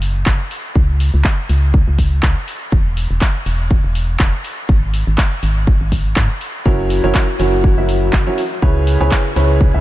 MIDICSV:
0, 0, Header, 1, 4, 480
1, 0, Start_track
1, 0, Tempo, 491803
1, 738, Time_signature, 4, 2, 24, 8
1, 9571, End_track
2, 0, Start_track
2, 0, Title_t, "Upright piano"
2, 0, Program_c, 0, 0
2, 6497, Note_on_c, 0, 54, 88
2, 6497, Note_on_c, 0, 61, 85
2, 6497, Note_on_c, 0, 64, 86
2, 6497, Note_on_c, 0, 66, 85
2, 6497, Note_on_c, 0, 70, 86
2, 6497, Note_on_c, 0, 73, 100
2, 6838, Note_off_c, 0, 54, 0
2, 6838, Note_off_c, 0, 61, 0
2, 6838, Note_off_c, 0, 64, 0
2, 6838, Note_off_c, 0, 66, 0
2, 6838, Note_off_c, 0, 70, 0
2, 6838, Note_off_c, 0, 73, 0
2, 6869, Note_on_c, 0, 54, 96
2, 6869, Note_on_c, 0, 61, 89
2, 6869, Note_on_c, 0, 64, 90
2, 6869, Note_on_c, 0, 66, 89
2, 6869, Note_on_c, 0, 70, 92
2, 6869, Note_on_c, 0, 73, 111
2, 7074, Note_off_c, 0, 54, 0
2, 7074, Note_off_c, 0, 61, 0
2, 7074, Note_off_c, 0, 64, 0
2, 7074, Note_off_c, 0, 66, 0
2, 7074, Note_off_c, 0, 70, 0
2, 7074, Note_off_c, 0, 73, 0
2, 7217, Note_on_c, 0, 54, 84
2, 7217, Note_on_c, 0, 61, 78
2, 7217, Note_on_c, 0, 64, 75
2, 7217, Note_on_c, 0, 66, 76
2, 7217, Note_on_c, 0, 70, 77
2, 7218, Note_on_c, 0, 73, 97
2, 7558, Note_off_c, 0, 54, 0
2, 7558, Note_off_c, 0, 61, 0
2, 7558, Note_off_c, 0, 64, 0
2, 7558, Note_off_c, 0, 66, 0
2, 7558, Note_off_c, 0, 70, 0
2, 7558, Note_off_c, 0, 73, 0
2, 7590, Note_on_c, 0, 54, 68
2, 7590, Note_on_c, 0, 61, 63
2, 7590, Note_on_c, 0, 64, 62
2, 7590, Note_on_c, 0, 66, 65
2, 7590, Note_on_c, 0, 70, 62
2, 7590, Note_on_c, 0, 76, 80
2, 8038, Note_off_c, 0, 54, 0
2, 8038, Note_off_c, 0, 64, 0
2, 8038, Note_off_c, 0, 66, 0
2, 8038, Note_off_c, 0, 76, 0
2, 8039, Note_off_c, 0, 61, 0
2, 8039, Note_off_c, 0, 70, 0
2, 8071, Note_on_c, 0, 54, 78
2, 8071, Note_on_c, 0, 61, 74
2, 8071, Note_on_c, 0, 64, 72
2, 8071, Note_on_c, 0, 66, 73
2, 8071, Note_on_c, 0, 70, 70
2, 8071, Note_on_c, 0, 73, 91
2, 8189, Note_off_c, 0, 54, 0
2, 8189, Note_off_c, 0, 61, 0
2, 8189, Note_off_c, 0, 64, 0
2, 8189, Note_off_c, 0, 66, 0
2, 8189, Note_off_c, 0, 70, 0
2, 8189, Note_off_c, 0, 73, 0
2, 8418, Note_on_c, 0, 49, 94
2, 8418, Note_on_c, 0, 61, 87
2, 8418, Note_on_c, 0, 64, 84
2, 8418, Note_on_c, 0, 68, 85
2, 8418, Note_on_c, 0, 71, 83
2, 8418, Note_on_c, 0, 73, 100
2, 8758, Note_off_c, 0, 49, 0
2, 8759, Note_off_c, 0, 61, 0
2, 8759, Note_off_c, 0, 64, 0
2, 8759, Note_off_c, 0, 68, 0
2, 8759, Note_off_c, 0, 71, 0
2, 8759, Note_off_c, 0, 73, 0
2, 8790, Note_on_c, 0, 49, 102
2, 8790, Note_on_c, 0, 61, 91
2, 8790, Note_on_c, 0, 64, 87
2, 8790, Note_on_c, 0, 68, 89
2, 8790, Note_on_c, 0, 71, 90
2, 8790, Note_on_c, 0, 73, 109
2, 8995, Note_off_c, 0, 49, 0
2, 8995, Note_off_c, 0, 61, 0
2, 8995, Note_off_c, 0, 64, 0
2, 8995, Note_off_c, 0, 68, 0
2, 8995, Note_off_c, 0, 71, 0
2, 8995, Note_off_c, 0, 73, 0
2, 9137, Note_on_c, 0, 73, 94
2, 9138, Note_on_c, 0, 49, 82
2, 9138, Note_on_c, 0, 61, 78
2, 9138, Note_on_c, 0, 64, 80
2, 9138, Note_on_c, 0, 68, 77
2, 9138, Note_on_c, 0, 71, 80
2, 9478, Note_off_c, 0, 49, 0
2, 9478, Note_off_c, 0, 61, 0
2, 9478, Note_off_c, 0, 64, 0
2, 9478, Note_off_c, 0, 68, 0
2, 9478, Note_off_c, 0, 73, 0
2, 9479, Note_off_c, 0, 71, 0
2, 9509, Note_on_c, 0, 49, 72
2, 9509, Note_on_c, 0, 61, 64
2, 9509, Note_on_c, 0, 68, 65
2, 9509, Note_on_c, 0, 71, 63
2, 9510, Note_on_c, 0, 64, 66
2, 9510, Note_on_c, 0, 76, 78
2, 9571, Note_off_c, 0, 49, 0
2, 9571, Note_off_c, 0, 61, 0
2, 9571, Note_off_c, 0, 64, 0
2, 9571, Note_off_c, 0, 68, 0
2, 9571, Note_off_c, 0, 71, 0
2, 9571, Note_off_c, 0, 76, 0
2, 9571, End_track
3, 0, Start_track
3, 0, Title_t, "FM bass"
3, 0, Program_c, 1, 39
3, 0, Note_on_c, 1, 30, 91
3, 229, Note_off_c, 1, 30, 0
3, 257, Note_on_c, 1, 30, 89
3, 368, Note_off_c, 1, 30, 0
3, 737, Note_on_c, 1, 37, 94
3, 1074, Note_off_c, 1, 37, 0
3, 1110, Note_on_c, 1, 37, 100
3, 1200, Note_off_c, 1, 37, 0
3, 1458, Note_on_c, 1, 37, 88
3, 1795, Note_off_c, 1, 37, 0
3, 1831, Note_on_c, 1, 37, 91
3, 2149, Note_off_c, 1, 37, 0
3, 2177, Note_on_c, 1, 37, 89
3, 2288, Note_off_c, 1, 37, 0
3, 2657, Note_on_c, 1, 28, 95
3, 2994, Note_off_c, 1, 28, 0
3, 3030, Note_on_c, 1, 28, 102
3, 3120, Note_off_c, 1, 28, 0
3, 3378, Note_on_c, 1, 28, 88
3, 3715, Note_off_c, 1, 28, 0
3, 3750, Note_on_c, 1, 28, 93
3, 4069, Note_off_c, 1, 28, 0
3, 4577, Note_on_c, 1, 32, 90
3, 4914, Note_off_c, 1, 32, 0
3, 4951, Note_on_c, 1, 32, 99
3, 5040, Note_off_c, 1, 32, 0
3, 5298, Note_on_c, 1, 32, 89
3, 5635, Note_off_c, 1, 32, 0
3, 5670, Note_on_c, 1, 32, 89
3, 5989, Note_off_c, 1, 32, 0
3, 6017, Note_on_c, 1, 44, 99
3, 6127, Note_off_c, 1, 44, 0
3, 6497, Note_on_c, 1, 30, 96
3, 6834, Note_off_c, 1, 30, 0
3, 6869, Note_on_c, 1, 30, 100
3, 6959, Note_off_c, 1, 30, 0
3, 7217, Note_on_c, 1, 30, 88
3, 7554, Note_off_c, 1, 30, 0
3, 7589, Note_on_c, 1, 30, 96
3, 7908, Note_off_c, 1, 30, 0
3, 7937, Note_on_c, 1, 30, 87
3, 8047, Note_off_c, 1, 30, 0
3, 8417, Note_on_c, 1, 37, 96
3, 8754, Note_off_c, 1, 37, 0
3, 8789, Note_on_c, 1, 37, 101
3, 8879, Note_off_c, 1, 37, 0
3, 9137, Note_on_c, 1, 37, 88
3, 9474, Note_off_c, 1, 37, 0
3, 9509, Note_on_c, 1, 37, 93
3, 9571, Note_off_c, 1, 37, 0
3, 9571, End_track
4, 0, Start_track
4, 0, Title_t, "Drums"
4, 17, Note_on_c, 9, 46, 98
4, 115, Note_off_c, 9, 46, 0
4, 254, Note_on_c, 9, 39, 102
4, 257, Note_on_c, 9, 36, 114
4, 352, Note_off_c, 9, 39, 0
4, 355, Note_off_c, 9, 36, 0
4, 497, Note_on_c, 9, 46, 85
4, 595, Note_off_c, 9, 46, 0
4, 737, Note_on_c, 9, 36, 112
4, 835, Note_off_c, 9, 36, 0
4, 977, Note_on_c, 9, 46, 95
4, 1075, Note_off_c, 9, 46, 0
4, 1214, Note_on_c, 9, 39, 108
4, 1217, Note_on_c, 9, 36, 112
4, 1312, Note_off_c, 9, 39, 0
4, 1315, Note_off_c, 9, 36, 0
4, 1457, Note_on_c, 9, 46, 83
4, 1555, Note_off_c, 9, 46, 0
4, 1697, Note_on_c, 9, 36, 117
4, 1795, Note_off_c, 9, 36, 0
4, 1937, Note_on_c, 9, 36, 55
4, 1938, Note_on_c, 9, 46, 101
4, 2035, Note_off_c, 9, 36, 0
4, 2035, Note_off_c, 9, 46, 0
4, 2174, Note_on_c, 9, 39, 104
4, 2177, Note_on_c, 9, 36, 110
4, 2272, Note_off_c, 9, 39, 0
4, 2275, Note_off_c, 9, 36, 0
4, 2418, Note_on_c, 9, 46, 88
4, 2516, Note_off_c, 9, 46, 0
4, 2657, Note_on_c, 9, 36, 108
4, 2755, Note_off_c, 9, 36, 0
4, 2898, Note_on_c, 9, 46, 99
4, 2996, Note_off_c, 9, 46, 0
4, 3135, Note_on_c, 9, 39, 116
4, 3137, Note_on_c, 9, 36, 111
4, 3233, Note_off_c, 9, 39, 0
4, 3235, Note_off_c, 9, 36, 0
4, 3378, Note_on_c, 9, 46, 82
4, 3476, Note_off_c, 9, 46, 0
4, 3617, Note_on_c, 9, 36, 108
4, 3715, Note_off_c, 9, 36, 0
4, 3858, Note_on_c, 9, 46, 96
4, 3955, Note_off_c, 9, 46, 0
4, 4094, Note_on_c, 9, 39, 110
4, 4097, Note_on_c, 9, 36, 112
4, 4191, Note_off_c, 9, 39, 0
4, 4195, Note_off_c, 9, 36, 0
4, 4337, Note_on_c, 9, 46, 86
4, 4435, Note_off_c, 9, 46, 0
4, 4577, Note_on_c, 9, 36, 112
4, 4675, Note_off_c, 9, 36, 0
4, 4818, Note_on_c, 9, 46, 97
4, 4915, Note_off_c, 9, 46, 0
4, 5055, Note_on_c, 9, 39, 115
4, 5057, Note_on_c, 9, 36, 115
4, 5152, Note_off_c, 9, 39, 0
4, 5155, Note_off_c, 9, 36, 0
4, 5297, Note_on_c, 9, 46, 83
4, 5395, Note_off_c, 9, 46, 0
4, 5537, Note_on_c, 9, 36, 110
4, 5634, Note_off_c, 9, 36, 0
4, 5777, Note_on_c, 9, 36, 56
4, 5777, Note_on_c, 9, 46, 100
4, 5874, Note_off_c, 9, 36, 0
4, 5875, Note_off_c, 9, 46, 0
4, 6014, Note_on_c, 9, 39, 111
4, 6017, Note_on_c, 9, 36, 113
4, 6112, Note_off_c, 9, 39, 0
4, 6114, Note_off_c, 9, 36, 0
4, 6257, Note_on_c, 9, 46, 84
4, 6355, Note_off_c, 9, 46, 0
4, 6497, Note_on_c, 9, 36, 116
4, 6594, Note_off_c, 9, 36, 0
4, 6737, Note_on_c, 9, 46, 100
4, 6834, Note_off_c, 9, 46, 0
4, 6974, Note_on_c, 9, 39, 119
4, 6977, Note_on_c, 9, 36, 121
4, 7072, Note_off_c, 9, 39, 0
4, 7074, Note_off_c, 9, 36, 0
4, 7217, Note_on_c, 9, 46, 86
4, 7315, Note_off_c, 9, 46, 0
4, 7457, Note_on_c, 9, 36, 119
4, 7554, Note_off_c, 9, 36, 0
4, 7698, Note_on_c, 9, 46, 99
4, 7795, Note_off_c, 9, 46, 0
4, 7934, Note_on_c, 9, 39, 116
4, 7937, Note_on_c, 9, 36, 118
4, 8032, Note_off_c, 9, 39, 0
4, 8034, Note_off_c, 9, 36, 0
4, 8177, Note_on_c, 9, 46, 89
4, 8275, Note_off_c, 9, 46, 0
4, 8417, Note_on_c, 9, 36, 123
4, 8515, Note_off_c, 9, 36, 0
4, 8658, Note_on_c, 9, 46, 106
4, 8756, Note_off_c, 9, 46, 0
4, 8894, Note_on_c, 9, 39, 122
4, 8897, Note_on_c, 9, 36, 120
4, 8992, Note_off_c, 9, 39, 0
4, 8994, Note_off_c, 9, 36, 0
4, 9138, Note_on_c, 9, 46, 91
4, 9235, Note_off_c, 9, 46, 0
4, 9377, Note_on_c, 9, 36, 120
4, 9474, Note_off_c, 9, 36, 0
4, 9571, End_track
0, 0, End_of_file